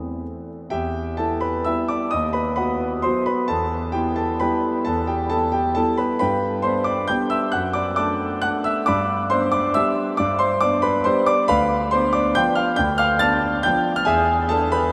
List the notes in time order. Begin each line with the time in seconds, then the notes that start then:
Already playing: E2 E3 A3 C4 A4
0.70 E2 G4 E5 G5
1.17 B3 E4 A4 A5
1.41 B4 B5
1.65 G3 B3 E4 E5 E6
1.88 D5 D6
2.11 D#2 D#5 D#6
2.33 B4 B5
2.56 B3 F#4 B4 F#5 B5
3.02 F#3 B3 F#4 C5 C6
3.26 B4 B5
3.48 E2 A4 A5
3.92 B3 E4 G4 G5
4.16 A4 A5
4.40 G3 B3 E4 B4 G5 B5
4.85 E2 A4 A5
5.07 G4 G5
5.30 B3 E4 A4 A5
5.52 G4 G5
5.75 G3 B3 E4 A4 A5
5.97 B4 B5
6.19 G2 B4 G5 B5
6.62 B3 D4 C5 C6
6.84 D5 D6
7.08 G3 B3 D4 G5 G6
7.30 E5 E6
7.52 F#2 F#5 F#6
7.73 D5 D6
7.96 A3 D4 D5 A5 D6
8.42 A3 D4 F#5 F#6
8.64 E5 E6
8.86 G2 D5 B5 D6
9.30 B3 D4 C5 C6
9.52 D5 D6
9.74 G3 B3 D4 E5 E6
10.17 G2 D5 D6
10.39 C5 C6
10.61 B3 D4 D5 D6
10.82 B4 B5
11.04 G3 B3 D4 C5 C6
11.26 D5 D6
11.48 D2 B4 F5 B5
11.91 B3 D4 C5 C6
12.13 D5 D6
12.35 F3 B3 D4 G5 G6
12.55 F5 F6
12.76 D2 G5 G6
12.98 F5 F6
13.19 B3 D4 A5 F6 A6
13.63 F3 B3 D4 G5 G6
13.96 F6
14.05 E2 G#4 E5 G#5
14.49 B3 D4 A4 A5
14.72 B4 B5